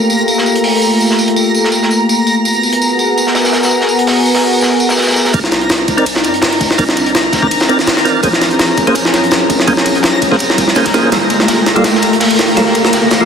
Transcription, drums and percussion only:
0.10 tambourine medium
0.28 tambourine medium
0.38 snare medium
0.46 tambourine medium
0.56 closed hi-hat soft
0.64 open hi-hat medium
0.82 tambourine medium
1.00 tambourine medium
1.10 snare soft
1.19 tambourine medium
1.28 closed hi-hat soft
1.36 tambourine medium
1.54 tambourine medium
1.64 snare soft
1.72 tambourine medium
1.83 snare soft
1.91 tambourine medium
2.09 tambourine medium
2.27 tambourine medium
2.45 tambourine medium
2.63 tambourine medium
2.73 closed hi-hat soft
2.82 tambourine medium
2.99 tambourine medium
3.18 tambourine medium
3.27 snare soft
3.35 snare loud
3.35 tambourine medium
3.45 snare loud
3.45 tambourine medium
3.53 snare loud
3.53 tambourine medium
3.63 snare medium
3.63 tambourine medium
3.71 tambourine medium
3.81 snare soft
3.89 tambourine medium
3.99 closed hi-hat soft
4.07 snare loud
4.07 open hi-hat medium
4.26 tambourine medium
4.35 snare loud
4.35 open hi-hat medium
4.53 tambourine medium
4.61 snare loud
4.61 tambourine medium
4.80 tambourine medium
4.89 snare loud
4.89 tambourine medium
4.97 snare medium
4.97 tambourine medium
5.02 snare medium
5.02 tambourine medium
5.07 snare medium
5.07 tambourine medium
5.11 snare medium
5.11 tambourine medium
5.16 snare medium
5.16 tambourine medium
5.25 snare loud
5.25 tambourine medium
5.33 kick loud
5.33 ride medium
5.33 tambourine medium
5.44 snare soft
5.51 snare soft
5.51 ride medium
5.51 tambourine medium
5.61 closed hi-hat soft
5.69 snare loud
5.69 ride medium
5.69 tambourine medium
5.88 kick medium
5.88 ride medium
5.88 tambourine medium
5.98 ride soft
6.06 ride medium
6.06 tambourine medium
6.15 snare medium
6.16 snare soft
6.24 ride medium
6.24 tambourine medium
6.34 closed hi-hat soft
6.42 snare loud
6.42 open hi-hat medium
6.42 ride medium
6.53 ride soft
6.61 kick medium
6.61 ride medium
6.61 tambourine medium
6.71 snare soft
6.78 kick loud
6.78 ride medium
6.78 tambourine medium
6.89 snare medium
6.89 snare soft
6.97 ride medium
6.97 tambourine medium
7.06 closed hi-hat soft
7.15 snare loud
7.15 ride medium
7.15 tambourine medium
7.33 kick medium
7.33 snare medium
7.33 ride medium
7.33 tambourine medium
7.43 kick medium
7.51 ride medium
7.51 tambourine medium
7.60 snare loud
7.60 snare soft
7.60 tambourine medium
7.69 ride medium
7.79 snare soft
7.79 tambourine medium
7.86 snare loud
7.86 ride medium
7.86 tambourine medium
7.97 snare medium
8.05 snare soft
8.05 ride medium
8.05 tambourine medium
8.23 kick loud
8.23 ride medium
8.23 tambourine medium
8.33 snare soft
8.42 snare soft
8.42 ride medium
8.42 tambourine medium
8.51 closed hi-hat soft
8.59 snare loud
8.59 ride medium
8.59 tambourine medium
8.77 kick medium
8.77 ride medium
8.77 tambourine medium
8.87 ride soft
8.95 ride medium
8.95 tambourine medium
9.05 snare soft
9.05 snare medium
9.14 snare soft
9.14 ride medium
9.14 tambourine medium
9.24 closed hi-hat soft
9.31 snare loud
9.31 snare medium
9.31 ride medium
9.31 tambourine medium
9.50 kick medium
9.50 ride medium
9.50 tambourine medium
9.60 snare soft
9.68 kick loud
9.68 ride medium
9.68 tambourine medium
9.77 snare soft
9.77 snare medium
9.86 ride medium
9.86 tambourine medium
9.95 closed hi-hat soft
10.03 snare loud
10.03 ride medium
10.03 tambourine medium
10.21 kick medium
10.21 ride medium
10.21 tambourine medium
10.32 kick medium
10.32 snare soft
10.39 ride medium
10.39 tambourine medium
10.50 snare soft
10.58 kick loud
10.58 ride medium
10.58 tambourine medium
10.68 snare soft
10.75 snare soft
10.75 ride medium
10.75 tambourine medium
10.85 kick loud
10.85 snare loud
10.85 ride medium
10.94 snare soft
10.94 ride medium
10.94 tambourine medium
11.12 snare soft
11.12 ride medium
11.12 tambourine medium
11.30 ride medium
11.30 tambourine medium
11.40 snare soft
11.40 closed hi-hat soft
11.48 snare loud
11.48 ride medium
11.48 tambourine medium
11.66 snare medium
11.66 ride medium
11.66 tambourine medium
11.76 ride soft
11.84 snare medium
11.84 ride medium
11.84 tambourine medium
11.95 snare medium
12.02 ride medium
12.02 tambourine medium
12.13 closed hi-hat soft
12.20 snare loud
12.20 open hi-hat medium
12.20 ride medium
12.31 ride soft
12.38 snare medium
12.38 ride medium
12.38 tambourine medium
12.57 snare medium
12.57 ride medium
12.57 tambourine medium
12.66 snare soft
12.75 ride medium
12.75 tambourine medium
12.84 snare medium
12.84 closed hi-hat soft
12.93 snare loud
12.93 ride medium
12.93 tambourine medium
13.11 snare medium
13.11 ride medium
13.11 tambourine medium

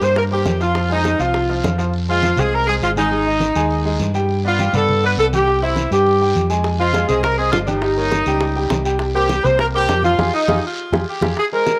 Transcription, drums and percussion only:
0.02 short guiro medium
0.16 high bongo medium
0.16 high conga soft
0.16 long guiro medium
0.31 high bongo soft
0.31 high conga soft
0.46 high bongo soft
0.46 low bongo medium
0.46 high conga medium
0.46 short guiro medium
0.61 high bongo soft
0.61 high conga soft
0.61 short guiro medium
0.75 high bongo medium
0.75 high conga soft
0.75 long guiro medium
0.90 high bongo soft
0.90 high conga soft
1.04 high bongo medium
1.04 high conga medium
1.04 short guiro medium
1.19 high conga soft
1.19 short guiro medium
1.34 high bongo medium
1.34 high conga soft
1.34 long guiro medium
1.49 high bongo soft
1.49 high conga soft
1.64 high bongo soft
1.64 low bongo medium
1.64 high conga medium
1.64 short guiro medium
1.79 high bongo soft
1.79 short guiro medium
1.93 high conga soft
1.93 long guiro medium
2.08 high conga soft
2.22 high conga medium
2.22 short guiro medium
2.36 high conga soft
2.36 low conga medium
2.36 short guiro medium
2.52 high conga soft
2.52 long guiro medium
2.66 high conga soft
2.82 high conga soft
2.82 short guiro medium
2.96 high conga medium
2.96 short guiro medium
3.11 high conga soft
3.11 long guiro medium
3.26 high conga soft
3.40 high conga medium
3.40 short guiro medium
3.55 high conga soft
3.55 short guiro medium
3.70 high conga soft
3.70 long guiro medium
3.85 high conga soft
4.00 high conga medium
4.00 short guiro medium
4.14 high conga soft
4.14 short guiro medium
4.29 high conga soft
4.29 long guiro medium
4.44 high conga soft
4.59 high conga medium
4.59 short guiro medium
4.74 high conga soft
4.74 low conga medium
4.74 short guiro medium
4.88 high conga soft
4.88 low conga medium
4.88 long guiro medium
5.03 high conga soft
5.18 high conga soft
5.18 short guiro medium
5.33 high conga medium
5.33 short guiro medium
5.47 high conga soft
5.47 long guiro medium
5.62 high conga soft
5.76 high conga loud
5.76 short guiro medium
5.91 high conga soft
5.91 short guiro medium
6.06 high conga soft
6.06 long guiro medium
6.21 high conga soft
6.35 high conga medium
6.35 short guiro medium
6.50 high conga soft
6.50 short guiro medium
6.64 high bongo medium
6.64 high conga soft
6.64 long guiro medium
6.79 high conga soft
6.93 high bongo medium
6.93 high conga medium
6.93 short guiro medium
7.09 high conga soft
7.09 low conga medium
7.09 short guiro medium
7.23 high bongo medium
7.23 high conga soft
7.23 low conga medium
7.23 long guiro medium
7.39 high conga soft
7.52 high bongo medium
7.52 low bongo medium
7.52 short guiro medium
7.67 high conga medium
7.67 short guiro medium
7.82 high bongo medium
7.82 long guiro medium
7.97 high conga soft
8.12 high bongo medium
8.12 high conga medium
8.12 short guiro medium
8.26 high bongo soft
8.26 high conga soft
8.26 short guiro medium
8.41 high bongo medium
8.41 high conga soft
8.41 long guiro medium
8.56 high bongo soft
8.56 high conga soft
8.70 high bongo medium
8.70 low bongo medium
8.70 high conga medium
8.70 short guiro medium
8.85 high bongo soft
8.85 high conga soft
8.85 short guiro medium
8.99 high bongo medium
8.99 high conga soft
8.99 long guiro medium
9.15 high conga soft
9.29 high bongo medium
9.29 high conga medium
9.29 short guiro medium
9.45 high conga soft
9.45 low conga medium
9.45 short guiro medium
9.59 high bongo medium
9.59 high conga soft
9.59 long guiro medium
9.74 high conga soft
9.89 high bongo medium
9.89 low bongo medium
9.89 high conga soft
9.89 short guiro medium
10.03 high conga medium
10.03 short guiro medium
10.18 high bongo medium
10.18 high conga medium
10.18 long guiro loud
10.48 high bongo loud
10.48 high conga loud
10.48 long guiro loud
10.93 high bongo loud
10.93 high conga medium
10.93 long guiro medium
11.21 high bongo loud
11.21 high conga loud
11.21 long guiro loud
11.36 high bongo medium
11.36 high conga soft
11.36 long guiro medium
11.52 high conga soft
11.66 high bongo medium
11.66 high conga medium
11.66 short guiro medium

